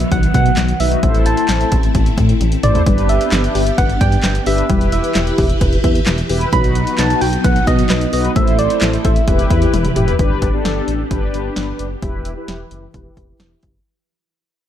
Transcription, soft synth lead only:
0.00 0.11 E5 loud
0.12 0.33 F#5 loud
0.34 0.82 F#5 loud
0.80 1.28 E5 loud
1.26 2.18 A5 loud
2.63 3.11 D5 loud
3.09 3.79 E5 loud
3.78 4.00 F#5 loud
4.01 4.43 G5 loud
4.47 4.89 E5 loud
4.92 5.80 E5 loud
6.53 7.00 B5 loud
6.99 7.23 A5 loud
7.21 7.46 G5 loud
7.44 7.69 F#5 loud
7.67 8.13 D#5 loud
8.13 8.38 D#5 loud
8.36 8.60 E5 loud
8.59 9.06 D5 loud
9.05 9.96 E5 medium

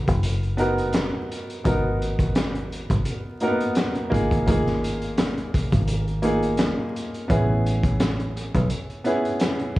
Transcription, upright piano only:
0.00 0.57 B3 medium
0.00 0.58 D#4 medium
0.00 0.59 F#4 medium
0.00 0.59 A#4 loud
0.57 1.24 B3 loud
0.57 1.24 D#4 medium
0.57 1.25 F#4 medium
0.57 1.25 A#4 loud
1.64 2.53 B3 medium
1.64 2.54 D#4 medium
1.64 2.54 F#4 medium
1.64 2.55 A#4 medium
3.41 3.48 A#3 medium
3.41 4.07 D#4 medium
3.41 4.08 F#4 medium
3.41 4.08 A#4 loud
3.47 4.10 B3 loud
4.10 4.40 A#3 loud
4.10 4.40 D#4 medium
4.10 4.41 F4 medium
4.10 4.41 G#4 loud
4.47 5.36 A#3 medium
4.47 5.36 D#4 medium
4.47 5.36 F4 medium
4.47 5.37 G#4 loud
6.22 6.89 A#3 medium
6.22 6.89 D#4 medium
6.22 6.90 F4 medium
6.22 6.90 G#4 loud
7.28 8.17 B3 medium
7.28 8.18 C#4 medium
7.28 8.18 E4 medium
7.28 8.19 G#4 loud
9.04 9.71 B3 loud
9.04 9.71 C#4 medium
9.04 9.72 E4 medium
9.04 9.72 G#4 loud

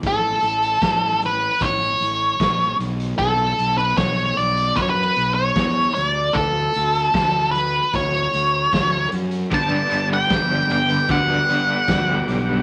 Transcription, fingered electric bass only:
0.03 0.36 A1 medium
0.42 0.75 A1 medium
0.82 1.47 A1 medium
1.61 1.94 A1 medium
2.01 2.33 A1 medium
2.40 2.73 A#1 medium
2.79 3.12 B1 medium
3.19 3.52 B1 medium
3.59 3.91 B1 medium
3.98 4.31 B1 medium
4.37 4.70 B1 medium
4.77 5.10 F#2 medium
5.17 5.49 B1 medium
5.56 5.89 E2 medium
5.97 6.29 D2 medium
6.35 6.68 D2 medium
6.76 7.08 D2 medium
7.14 7.79 D2 medium
7.94 8.26 D2 medium
8.33 8.66 D2 medium
8.74 9.06 D2 medium
9.13 9.45 F#2 medium
9.52 9.84 G1 medium
9.92 10.24 G1 medium
10.30 10.63 G1 medium
10.70 11.02 G1 medium
11.09 11.42 D2 medium
11.48 11.81 G1 medium
11.89 12.21 D2 medium
12.28 12.60 B1 medium

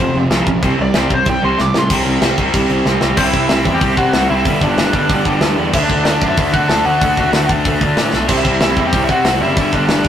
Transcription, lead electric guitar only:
0.00 0.15 C5 loud
0.82 1.11 D5 loud
1.15 1.28 C5 loud
1.30 1.44 G5 loud
1.45 1.61 C6 loud
1.61 1.75 D6 loud
1.78 1.92 C6 loud
3.17 3.26 C4 medium
3.17 3.26 C5 loud
3.24 3.48 E4 medium
3.24 3.48 E5 loud
3.49 3.72 E4 medium
3.49 3.73 E5 loud
3.74 3.97 G4 medium
3.74 3.98 G5 medium
3.98 4.28 F#4 medium
3.98 4.29 F#5 loud
4.29 4.60 E4 medium
4.29 4.62 E5 medium
4.63 5.54 D4 medium
4.63 5.54 D5 medium
5.75 5.82 E4 medium
5.75 5.83 E5 loud
5.83 6.04 D4 medium
5.83 6.04 D5 loud
6.05 6.28 D4 medium
6.05 6.30 D5 loud
6.29 6.52 E4 medium
6.29 6.52 E5 loud
6.53 6.68 F#4 medium
6.53 6.70 F#5 loud
6.68 6.84 A4 medium
6.68 6.86 A5 loud
6.85 7.45 F#4 medium
6.85 7.49 F#5 medium
8.29 8.37 C4 medium
8.29 8.37 C5 loud
8.37 8.60 E4 medium
8.37 8.60 E5 loud
8.61 8.83 E4 medium
8.61 8.86 E5 loud
8.87 9.02 G4 medium
8.87 9.03 G5 loud
9.02 9.09 E5 medium
9.10 9.39 F#4 loud
9.10 9.41 F#5 loud
9.41 9.71 E4 medium
9.41 9.74 E5 loud
9.74 10.08 D4 medium
9.74 10.08 D5 medium

